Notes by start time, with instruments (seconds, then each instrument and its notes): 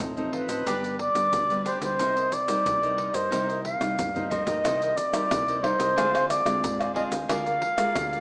Already playing: nylon-string guitar F3 C4 D#4, cavaquinho A4 C5 D#5
0.00 fretless electric bass A1, nylon-string guitar A2, pandeiro, maracas, surdo
0.17 nylon-string guitar F3 C4 D#4, cavaquinho A4 C5 D#5, pandeiro, maracas
0.32 cavaquinho F4 A4 C5 D#5, flute B4, pandeiro, surdo
0.48 fretless electric bass A1, cavaquinho A4 C5 D#5, pandeiro, maracas, surdo
0.66 fretless electric bass G1, nylon-string guitar G2 G3 B3 D4, cavaquinho D4 G4 B4 D5, pandeiro, maracas, surdo
0.83 cavaquinho G4 B4 D5, pandeiro, maracas
0.99 flute D5, muted cavaquinho stroke, pandeiro
1.15 fretless electric bass G1, nylon-string guitar G3 B3 D4, pandeiro, maracas, surdo
1.33 fretless electric bass D2, nylon-string guitar D3, pandeiro, maracas, surdo
1.50 nylon-string guitar G3 B3 D4, cavaquinho G4 B4 D5, pandeiro, maracas
1.65 cavaquinho D4 G4 B4 D5, flute C5, pandeiro, maracas
1.81 fretless electric bass D2, nylon-string guitar G3 A#3 D#4, cavaquinho G4 B4 D5, flute C5, pandeiro, maracas, surdo
1.99 fretless electric bass C2, nylon-string guitar C3, cavaquinho D#4 A#4 C5 D#5, pandeiro, maracas, surdo
2.16 cavaquinho A#4 C5 D#5, pandeiro, maracas
2.32 flute D5, muted cavaquinho stroke, pandeiro, maracas
2.47 nylon-string guitar G3 A#3 D#4, cavaquinho A#4 C5, pandeiro, maracas, surdo
2.66 fretless electric bass C2, nylon-string guitar G2, pandeiro, maracas, surdo
2.82 nylon-string guitar G3 A#3 D#4, cavaquinho A#4 C5 D#5, pandeiro, maracas
2.97 cavaquinho D#4 A#4 C5 D#5, pandeiro, surdo
3.13 fretless electric bass G2, cavaquinho A#4 C5 D#5, flute C5, pandeiro, maracas, surdo
3.31 fretless electric bass C2, nylon-string guitar C3 G3 A#3 D#4, cavaquinho D#4 A#4 C5 D#5, pandeiro, maracas, surdo
3.48 cavaquinho A#4 C5 D#5, pandeiro, maracas
3.64 flute F5, muted cavaquinho stroke, pandeiro
3.80 fretless electric bass C2, nylon-string guitar G3 A#3 D#4, pandeiro, tamborim, maracas, surdo
3.98 nylon-string guitar G2, fretless electric bass G2, surdo, pandeiro, maracas
4.15 nylon-string guitar G3 A#3 D#4, cavaquinho A#4 C5 D#5, surdo, pandeiro, maracas
4.30 cavaquinho D#4 A#4 C5 D#5, flute D#5, pandeiro, maracas, surdo
4.46 fretless electric bass G2, nylon-string guitar G3 A#3 D#4, cavaquinho A#4 C5 D#5, pandeiro, maracas, surdo
4.64 fretless electric bass C2, nylon-string guitar C3, cavaquinho D#4 A#4 C5 D#5, pandeiro, tamborim, maracas, surdo
4.81 cavaquinho A#4 C5 D#5, pandeiro, maracas
4.96 flute D5, muted cavaquinho stroke, pandeiro, maracas
5.12 nylon-string guitar G3 A#3 D#4, cavaquinho A#4 C5, pandeiro, tamborim, maracas, surdo
5.30 fretless electric bass C2, nylon-string guitar G2, pandeiro, tamborim, maracas, surdo
5.48 cavaquinho A#4 C5 D#5, pandeiro, maracas
5.63 nylon-string guitar G3 A#3 D#4, cavaquinho D#4 A#4 C5 D#5, flute C5, pandeiro, tamborim, surdo
5.78 fretless electric bass C2, cavaquinho A#4 C5 D#5, pandeiro, maracas, surdo
5.96 fretless electric bass D2, nylon-string guitar D3 G#3 C4 F4, cavaquinho D4 G#4 C5 F5, pandeiro, tamborim, maracas, surdo
6.13 cavaquinho G#4 C5 F5, pandeiro, tamborim, maracas
6.29 flute D5, muted cavaquinho stroke, pandeiro, tamborim, maracas
6.45 fretless electric bass D2, nylon-string guitar G#3 C4 F4, pandeiro, tamborim, maracas, surdo
6.63 fretless electric bass G#2, nylon-string guitar D3, pandeiro, maracas, surdo
6.79 cavaquinho G#4 C5 F5, pandeiro, tamborim, maracas
6.94 nylon-string guitar G#3 C4 F4, cavaquinho D4 G#4 C5 F5, flute D#5, pandeiro
7.10 fretless electric bass D2, cavaquinho G#4 C5 F5, pandeiro, maracas, surdo
7.28 fretless electric bass D2, nylon-string guitar D3 G#3 A#3 F4, cavaquinho G#4 A#4 D5 F5, flute F5, pandeiro, tamborim, maracas, surdo
7.45 cavaquinho A#4 D5 F5, pandeiro, maracas
7.60 muted cavaquinho stroke, pandeiro
7.76 nylon-string guitar G#3 A#3 F4, cavaquinho A#4 D5 F5, pandeiro, tamborim, maracas, surdo
7.96 fretless electric bass D2, nylon-string guitar D3, pandeiro, tamborim, maracas, surdo
8.11 cavaquinho A#4 D5 F5, pandeiro, maracas